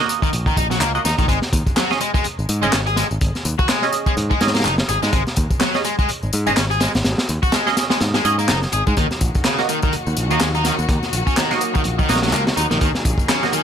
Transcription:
0.00 A#3 F#4 D#5
0.09 closed hi-hat, tambourine
0.22 D#3, kick, tambourine
0.33 A#1, closed hi-hat, tambourine
0.46 D#3, kick, tambourine
0.57 A#1 D#4, kick, closed hi-hat, tambourine
0.71 F#3, snare, tambourine
0.81 C#2 A#3, clap, tambourine
0.95 A#3 F#4 D#5, tambourine
1.05 D#2 D#4, snare, tambourine
1.18 A#1 D#3, kick, closed hi-hat, tambourine
1.28 G#1 G#3, kick, closed hi-hat, tambourine
1.42 snare, tambourine
1.53 D#2, kick, closed hi-hat, tambourine
1.67 kick, tambourine
1.76 F#3, snare, clap, closed hi-hat, tambourine
1.91 C#4 G#4 D#5, snare, tambourine
2.01 G#3, closed hi-hat, tambourine
2.14 G#3, kick, tambourine
2.24 muted picked electric bass stroke, closed hi-hat, tambourine
2.39 G#1, tambourine
2.49 G#2, closed hi-hat, tambourine
2.63 G#1 G#3 C#4 G#4 D#5, tambourine
2.73 G#1 C#4, snare, clap, closed hi-hat, tambourine
2.87 G#4, closed hi-hat, tambourine
2.96 G#3, snare, closed hi-hat, tambourine
3.11 G#1, tambourine
3.21 G#1, kick, closed hi-hat, tambourine
3.35 snare, tambourine
3.45 D#2, closed hi-hat, tambourine
3.59 F#4, kick, tambourine
3.69 G#3, snare, clap, closed hi-hat, tambourine
3.82 C#4 G#4 D#5, snare, tambourine
3.93 closed hi-hat, tambourine
4.06 G#3, kick, tambourine
4.17 G#2, closed hi-hat, tambourine
4.31 G#3, kick, tambourine
4.40 G#2 C#4 G#4 D#5, snare, closed hi-hat, tambourine
4.47 snare, closed hi-hat
4.54 A#3, snare, closed hi-hat, tambourine
4.60 snare, closed hi-hat
4.65 F#1 D#4, clap, closed hi-hat, tambourine
4.78 snare, tambourine
4.89 G#1 G#4, closed hi-hat, tambourine
5.03 G#2 G#3, snare, tambourine
5.13 G#1 G#3, kick, closed hi-hat, tambourine
5.27 snare, tambourine
5.36 D#2, kick, closed hi-hat, tambourine
5.51 kick, tambourine
5.61 F#3, snare, clap, closed hi-hat, tambourine
5.75 C#4 G#4 D#5, snare, tambourine
5.85 G#3, closed hi-hat, tambourine
5.99 G#3, kick, tambourine
6.09 muted picked electric bass stroke, closed hi-hat, tambourine
6.23 G#1, tambourine
6.33 G#2, closed hi-hat, tambourine
6.47 G#1 G#3 C#4 G#4 D#5, tambourine
6.57 G#1 C#4, snare, clap, closed hi-hat, tambourine
6.71 G#4, closed hi-hat, tambourine
6.80 G#3, snare, closed hi-hat, tambourine
6.95 G#1, snare, closed hi-hat, tambourine
7.04 G#1, snare, closed hi-hat, tambourine
7.18 snare, closed hi-hat, tambourine
7.29 D#2, closed hi-hat, tambourine
7.43 F#4, kick, tambourine
7.52 G#3, snare, clap, closed hi-hat, tambourine
7.67 C#4 G#4 D#5, snare, tambourine
7.77 snare, closed hi-hat, tambourine
7.90 G#3, snare, closed hi-hat, tambourine
8.00 G#2, snare, closed hi-hat, tambourine
8.14 G#3, snare, closed hi-hat, tambourine
8.25 G#2 C#4 G#4 D#5, closed hi-hat, tambourine
8.39 A#3, tambourine
8.48 F#1 D#4, snare, clap, closed hi-hat, tambourine
8.62 snare, tambourine
8.72 G#1 G#4, closed hi-hat, tambourine
8.87 G#2 G#3, kick, tambourine
8.97 D#2 D#3 F#3 A#3 F#4, kick, closed hi-hat, tambourine
9.11 snare, tambourine
9.21 A#1, kick, closed hi-hat, tambourine
9.35 kick, tambourine
9.44 C#3, snare, clap, closed hi-hat, tambourine
9.59 A#3 F#4 D#5, snare, tambourine
9.69 D#3, closed hi-hat, tambourine
9.82 D#3, kick, tambourine
9.93 muted picked electric bass stroke, closed hi-hat, tambourine
10.06 D#2, tambourine
10.16 A#1, closed hi-hat, tambourine
10.31 D#2 D#3 A#3 F#4 D#5, tambourine
10.40 D#2 G#3, snare, clap, closed hi-hat, tambourine
10.55 D#4, closed hi-hat, tambourine
10.64 D#3, snare, closed hi-hat, tambourine
10.79 D#2, tambourine
10.89 D#2, kick, closed hi-hat, tambourine
11.03 snare, tambourine
11.13 A#1, closed hi-hat, tambourine
11.27 C#4, kick, tambourine
11.37 D#3, snare, clap, closed hi-hat, tambourine
11.51 A#3 F#4 D#5, snare, tambourine
11.61 closed hi-hat, tambourine
11.75 D#3, kick, tambourine
11.84 A#1, closed hi-hat, tambourine
11.99 D#3, kick, tambourine
12.09 A#1 A#3 D#4 F#4 D#5, snare, closed hi-hat, tambourine
12.15 snare, closed hi-hat
12.22 F#3, snare, closed hi-hat, tambourine
12.28 snare, closed hi-hat
12.33 C#2 A#3, clap, closed hi-hat, tambourine
12.47 snare, tambourine
12.57 D#2 D#4, closed hi-hat, tambourine
12.71 A#1 D#3, snare, tambourine
12.81 D#2 D#3 G#4, kick, closed hi-hat, tambourine
12.95 snare, tambourine
13.05 A#1, kick, closed hi-hat, tambourine
13.18 kick, tambourine
13.29 C#3, snare, clap, closed hi-hat, tambourine
13.43 A#3 F#4 D#5, snare, tambourine
13.53 D#3, closed hi-hat, tambourine

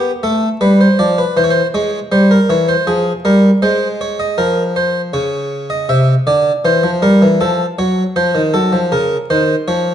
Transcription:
0.23 A3 A4
0.61 G3 B4
0.81 C5
0.99 F3 D5
1.18 B4
1.37 E3 C5
1.44 C#5
1.50 C5
1.74 G#3 C#5
2.12 G3 C5
2.31 A#4
2.50 E3 C#5
2.68 C5
2.87 F3 G#4
3.25 G3 A#4
3.62 G#3 C5
4.01 C#5
4.20 D#5
4.38 F3 A#4
4.76 C5
5.13 C#3 C#5
5.70 D#5
5.89 C3 E5
6.27 D3 D5
6.65 E3 C5
6.83 F3
7.02 G3 A#4
7.22 E3
7.41 F3 A4
7.79 F#3 C#5
8.16 F3 C5
8.35 D#3
8.54 F#3 A4
8.73 F3
8.92 C#3 A#4
9.30 D#3 C5
9.68 F3 C#5

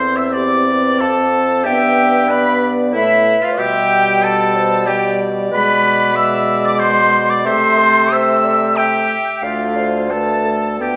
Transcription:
Already playing: E2 C4 A4 C5 C6
0.17 E5 E6
0.33 G4 D5 D6
0.68 B4
0.99 F2 A4 C5 A5
1.64 G2 B3 G4 E5 G5
2.28 B3 B4 D5 B5
2.92 A2 A3 E4 B4 E5
3.42 F4 F5
3.57 B2 G3 G4 E5 G5
4.23 A4 D5 A5
4.56 C5
4.86 G3 G4 D5 G5
5.51 B2 G#3 B4 B5
6.15 G#3 E5 E6
6.64 D5 D6
6.79 C5 C6
7.30 D5 D6
7.45 C3 A3 C5 E5 C6
7.78 A4
8.11 A3 C5 E5 E6
8.45 D5
8.77 G4 E5 G5
9.42 D2 A3 F4 D5 F5
9.77 C5
10.11 A3 A4 B4 A5
10.45 A4
10.80 D2 B3 G4 B4 G5

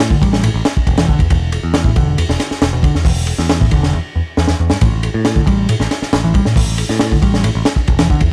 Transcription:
Already playing: A2
0.00 ride
0.10 D3, kick
0.21 A1 G3, kick, ride
0.33 snare
0.43 A2, ride
0.54 A1
0.65 snare, ride
0.77 muted picked electric bass stroke, kick
0.87 E1, kick, ride
0.98 E3, snare, ride
1.09 D3, kick
1.19 E2, kick, ride
1.30 E1 E2, kick, ride
1.52 ride
1.63 E2
1.74 snare, ride
1.84 A2, kick
1.96 E1 D3, kick, ride
2.18 E2, muted picked electric bass stroke, ride
2.29 E1, snare
2.40 snare, ride
2.51 muted picked electric bass stroke, snare
2.62 E1, snare, ride
2.73 B2
2.83 D3, kick, ride
2.95 E2, snare
3.05 E1 E2, kick, open hi-hat
3.27 ride
3.38 E2, snare
3.49 snare, ride
3.60 A2, kick
3.71 E1 D3, kick, ride
3.83 snare
3.93 E2
4.15 E2
4.37 E2, snare
4.48 E2, snare
4.60 E2
4.70 G2, snare
4.81 A1 A2, kick, ride
5.03 ride
5.14 A2
5.25 snare, ride
5.36 D3, kick
5.47 A1 G3, kick, ride
5.69 A2, ride
5.80 A1, snare
5.91 snare, ride
6.02 muted picked electric bass stroke, snare
6.13 A1, snare, ride
6.24 E3
6.34 G3, kick, ride
6.45 A2, snare
6.56 A1 A2, kick, open hi-hat
6.78 ride
6.89 A2, snare
6.99 snare, ride
7.11 D3, kick
7.22 A1 G3, kick, ride
7.34 snare
7.44 A2, ride
7.55 A1
7.65 snare, ride
7.76 muted picked electric bass stroke, kick
7.87 E1, kick, ride
7.99 E3, snare, ride
8.10 D3, kick
8.20 E2, kick, ride

